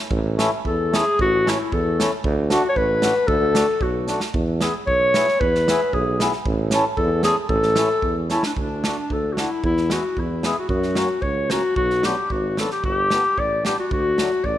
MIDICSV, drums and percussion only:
0, 0, Header, 1, 2, 480
1, 0, Start_track
1, 0, Key_signature, 3, "major"
1, 0, Tempo, 540054
1, 92, Time_signature, 2, 2, 24, 8
1, 1532, Tempo, 524934
1, 6812, Tempo, 533333
1, 7779, Key_signature, 2, "major"
1, 13188, End_track
2, 0, Start_track
2, 0, Title_t, "Drums"
2, 95, Note_on_c, 9, 36, 83
2, 184, Note_off_c, 9, 36, 0
2, 345, Note_on_c, 9, 38, 76
2, 345, Note_on_c, 9, 44, 43
2, 434, Note_off_c, 9, 38, 0
2, 434, Note_off_c, 9, 44, 0
2, 579, Note_on_c, 9, 36, 56
2, 667, Note_off_c, 9, 36, 0
2, 831, Note_on_c, 9, 38, 79
2, 831, Note_on_c, 9, 44, 40
2, 920, Note_off_c, 9, 38, 0
2, 920, Note_off_c, 9, 44, 0
2, 1060, Note_on_c, 9, 36, 73
2, 1149, Note_off_c, 9, 36, 0
2, 1310, Note_on_c, 9, 38, 74
2, 1310, Note_on_c, 9, 44, 44
2, 1398, Note_off_c, 9, 38, 0
2, 1398, Note_off_c, 9, 44, 0
2, 1532, Note_on_c, 9, 36, 64
2, 1624, Note_off_c, 9, 36, 0
2, 1784, Note_on_c, 9, 38, 82
2, 1784, Note_on_c, 9, 44, 45
2, 1875, Note_off_c, 9, 38, 0
2, 1875, Note_off_c, 9, 44, 0
2, 2007, Note_on_c, 9, 36, 84
2, 2098, Note_off_c, 9, 36, 0
2, 2244, Note_on_c, 9, 38, 83
2, 2244, Note_on_c, 9, 44, 41
2, 2336, Note_off_c, 9, 38, 0
2, 2336, Note_off_c, 9, 44, 0
2, 2482, Note_on_c, 9, 36, 61
2, 2573, Note_off_c, 9, 36, 0
2, 2719, Note_on_c, 9, 38, 78
2, 2719, Note_on_c, 9, 44, 43
2, 2810, Note_off_c, 9, 38, 0
2, 2810, Note_off_c, 9, 44, 0
2, 2956, Note_on_c, 9, 36, 79
2, 3047, Note_off_c, 9, 36, 0
2, 3201, Note_on_c, 9, 38, 84
2, 3201, Note_on_c, 9, 44, 50
2, 3292, Note_off_c, 9, 38, 0
2, 3292, Note_off_c, 9, 44, 0
2, 3437, Note_on_c, 9, 36, 70
2, 3528, Note_off_c, 9, 36, 0
2, 3683, Note_on_c, 9, 38, 41
2, 3683, Note_on_c, 9, 44, 39
2, 3774, Note_off_c, 9, 38, 0
2, 3774, Note_off_c, 9, 44, 0
2, 3799, Note_on_c, 9, 38, 58
2, 3891, Note_off_c, 9, 38, 0
2, 3925, Note_on_c, 9, 36, 81
2, 4017, Note_off_c, 9, 36, 0
2, 4168, Note_on_c, 9, 38, 74
2, 4168, Note_on_c, 9, 44, 46
2, 4259, Note_off_c, 9, 38, 0
2, 4259, Note_off_c, 9, 44, 0
2, 4412, Note_on_c, 9, 36, 57
2, 4504, Note_off_c, 9, 36, 0
2, 4657, Note_on_c, 9, 38, 71
2, 4657, Note_on_c, 9, 44, 43
2, 4749, Note_off_c, 9, 38, 0
2, 4749, Note_off_c, 9, 44, 0
2, 4786, Note_on_c, 9, 38, 22
2, 4877, Note_off_c, 9, 38, 0
2, 4901, Note_on_c, 9, 36, 83
2, 4993, Note_off_c, 9, 36, 0
2, 5029, Note_on_c, 9, 38, 28
2, 5120, Note_off_c, 9, 38, 0
2, 5150, Note_on_c, 9, 38, 80
2, 5150, Note_on_c, 9, 44, 49
2, 5242, Note_off_c, 9, 38, 0
2, 5242, Note_off_c, 9, 44, 0
2, 5380, Note_on_c, 9, 36, 57
2, 5472, Note_off_c, 9, 36, 0
2, 5625, Note_on_c, 9, 38, 72
2, 5625, Note_on_c, 9, 44, 38
2, 5717, Note_off_c, 9, 38, 0
2, 5717, Note_off_c, 9, 44, 0
2, 5738, Note_on_c, 9, 38, 23
2, 5830, Note_off_c, 9, 38, 0
2, 5858, Note_on_c, 9, 36, 83
2, 5950, Note_off_c, 9, 36, 0
2, 6090, Note_on_c, 9, 38, 73
2, 6090, Note_on_c, 9, 44, 42
2, 6182, Note_off_c, 9, 38, 0
2, 6182, Note_off_c, 9, 44, 0
2, 6331, Note_on_c, 9, 36, 64
2, 6423, Note_off_c, 9, 36, 0
2, 6568, Note_on_c, 9, 38, 79
2, 6568, Note_on_c, 9, 44, 47
2, 6659, Note_off_c, 9, 38, 0
2, 6659, Note_off_c, 9, 44, 0
2, 6807, Note_on_c, 9, 36, 80
2, 6897, Note_off_c, 9, 36, 0
2, 6927, Note_on_c, 9, 38, 26
2, 7017, Note_off_c, 9, 38, 0
2, 7044, Note_on_c, 9, 38, 74
2, 7044, Note_on_c, 9, 44, 48
2, 7134, Note_off_c, 9, 38, 0
2, 7134, Note_off_c, 9, 44, 0
2, 7285, Note_on_c, 9, 36, 59
2, 7375, Note_off_c, 9, 36, 0
2, 7531, Note_on_c, 9, 38, 44
2, 7531, Note_on_c, 9, 44, 42
2, 7621, Note_off_c, 9, 38, 0
2, 7621, Note_off_c, 9, 44, 0
2, 7650, Note_on_c, 9, 38, 69
2, 7740, Note_off_c, 9, 38, 0
2, 7773, Note_on_c, 9, 36, 70
2, 7863, Note_off_c, 9, 36, 0
2, 8018, Note_on_c, 9, 38, 72
2, 8108, Note_off_c, 9, 38, 0
2, 8256, Note_on_c, 9, 36, 54
2, 8346, Note_off_c, 9, 36, 0
2, 8498, Note_on_c, 9, 38, 63
2, 8588, Note_off_c, 9, 38, 0
2, 8736, Note_on_c, 9, 36, 74
2, 8826, Note_off_c, 9, 36, 0
2, 8857, Note_on_c, 9, 38, 21
2, 8947, Note_off_c, 9, 38, 0
2, 8973, Note_on_c, 9, 38, 67
2, 9063, Note_off_c, 9, 38, 0
2, 9214, Note_on_c, 9, 36, 54
2, 9304, Note_off_c, 9, 36, 0
2, 9453, Note_on_c, 9, 38, 70
2, 9543, Note_off_c, 9, 38, 0
2, 9685, Note_on_c, 9, 36, 73
2, 9775, Note_off_c, 9, 36, 0
2, 9807, Note_on_c, 9, 38, 22
2, 9897, Note_off_c, 9, 38, 0
2, 9923, Note_on_c, 9, 38, 74
2, 10013, Note_off_c, 9, 38, 0
2, 10162, Note_on_c, 9, 36, 59
2, 10252, Note_off_c, 9, 36, 0
2, 10412, Note_on_c, 9, 38, 76
2, 10502, Note_off_c, 9, 38, 0
2, 10650, Note_on_c, 9, 36, 79
2, 10740, Note_off_c, 9, 36, 0
2, 10775, Note_on_c, 9, 38, 24
2, 10865, Note_off_c, 9, 38, 0
2, 10894, Note_on_c, 9, 38, 72
2, 10984, Note_off_c, 9, 38, 0
2, 11135, Note_on_c, 9, 36, 54
2, 11225, Note_off_c, 9, 36, 0
2, 11380, Note_on_c, 9, 38, 62
2, 11470, Note_off_c, 9, 38, 0
2, 11499, Note_on_c, 9, 38, 22
2, 11589, Note_off_c, 9, 38, 0
2, 11617, Note_on_c, 9, 36, 68
2, 11707, Note_off_c, 9, 36, 0
2, 11858, Note_on_c, 9, 38, 69
2, 11948, Note_off_c, 9, 38, 0
2, 12103, Note_on_c, 9, 36, 50
2, 12193, Note_off_c, 9, 36, 0
2, 12347, Note_on_c, 9, 38, 68
2, 12437, Note_off_c, 9, 38, 0
2, 12584, Note_on_c, 9, 36, 76
2, 12674, Note_off_c, 9, 36, 0
2, 12827, Note_on_c, 9, 38, 72
2, 12917, Note_off_c, 9, 38, 0
2, 13060, Note_on_c, 9, 36, 51
2, 13150, Note_off_c, 9, 36, 0
2, 13188, End_track
0, 0, End_of_file